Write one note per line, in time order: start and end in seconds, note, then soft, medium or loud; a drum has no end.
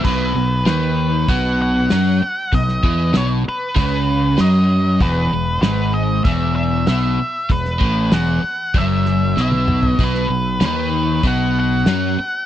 0.04 0.34 B1 medium
0.04 0.35 B2 loud
0.04 0.63 B4 medium
0.04 kick medium
0.04 crash medium
0.36 0.65 B1 medium
0.36 0.61 B2 medium
0.66 1.25 D#2 medium
0.66 1.28 D#3 loud
0.66 1.31 B4 medium
0.66 snare loud
0.66 open hi-hat soft
1.28 1.87 B1 medium
1.28 1.90 B2 loud
1.28 1.61 F#5 medium
1.28 kick loud
1.28 open hi-hat soft
1.62 2.57 F#5 loud
1.90 2.21 F#2 medium
1.90 2.21 F#3 loud
1.90 snare medium
1.90 open hi-hat soft
2.22 muted fingered electric bass stroke soft
2.22 muted overdriven electric guitar stroke medium
2.53 2.82 B1 medium
2.53 2.78 B2 medium
2.53 3.17 D#5 loud
2.53 kick medium
2.53 open hi-hat soft
2.68 snare soft
2.83 3.13 E2 medium
2.83 3.13 E3 medium
2.83 kick medium
3.13 3.45 B1 medium
3.13 3.44 B2 loud
3.13 3.25 C#5 medium
3.13 snare loud
3.13 open hi-hat soft
3.45 3.76 B4 medium
3.45 muted overdriven electric guitar stroke medium
3.45 muted fingered electric bass stroke soft
3.76 4.35 C#2 medium
3.76 4.38 C#3 loud
3.76 4.41 B4 medium
3.76 kick loud
3.76 open hi-hat soft
4.38 4.98 F#2 medium
4.38 5.00 F#3 medium
4.38 4.98 D#5 medium
4.38 snare medium
4.38 open hi-hat soft
5.00 5.30 E1 medium
5.00 5.31 E2 medium
5.00 5.60 B4 loud
5.00 kick loud
5.00 open hi-hat soft
5.32 5.61 E1 medium
5.32 5.58 E2 medium
5.62 6.21 G#1 medium
5.62 6.25 G#2 medium
5.62 5.92 B4 medium
5.62 snare loud
5.62 open hi-hat soft
5.94 6.24 D#5 medium
6.24 6.84 E1 medium
6.24 6.88 E2 loud
6.24 6.54 E5 medium
6.24 kick loud
6.24 open hi-hat medium
6.56 6.86 E5 medium
6.87 7.17 B1 medium
6.87 7.19 B2 loud
6.87 7.53 E5 medium
6.87 snare loud
6.87 open hi-hat soft
7.20 muted overdriven electric guitar stroke medium
7.20 muted fingered electric bass stroke soft
7.50 7.79 E1 medium
7.50 7.76 E2 medium
7.50 8.16 B4 medium
7.50 kick medium
7.50 open hi-hat medium
7.65 snare soft
7.80 8.11 A1 medium
7.80 8.11 A2 medium
7.80 kick medium
8.12 8.42 E1 medium
8.12 8.42 E2 loud
8.12 8.78 F#5 loud
8.12 snare loud
8.12 open hi-hat soft
8.43 muted overdriven electric guitar stroke medium
8.43 muted fingered electric bass stroke soft
8.74 9.33 F#1 medium
8.74 9.37 F#2 loud
8.74 9.40 E5 medium
8.74 kick loud
8.74 open hi-hat soft
9.06 snare soft
9.37 9.96 B1 medium
9.37 9.98 B2 loud
9.37 snare medium
9.41 9.86 E5 medium
9.52 high tom medium
9.68 mid tom medium
9.83 10.04 D#5 medium
9.83 floor tom medium
9.99 10.29 B1 medium
9.99 10.29 B2 loud
9.99 kick loud
9.99 open hi-hat soft
10.04 10.65 B4 medium
10.15 snare soft
10.30 10.60 B1 medium
10.30 10.56 B2 medium
10.61 11.20 D#2 medium
10.61 11.23 D#3 loud
10.61 snare loud
10.61 open hi-hat soft
10.66 11.23 B4 medium
11.23 11.83 B1 medium
11.23 11.86 B2 loud
11.23 kick loud
11.23 open hi-hat soft
11.28 11.59 F#5 medium
11.60 12.46 F#5 medium
11.86 12.16 F#2 medium
11.86 12.18 F#3 loud
11.86 snare medium
11.86 open hi-hat soft
12.18 muted fingered electric bass stroke soft
12.18 muted overdriven electric guitar stroke medium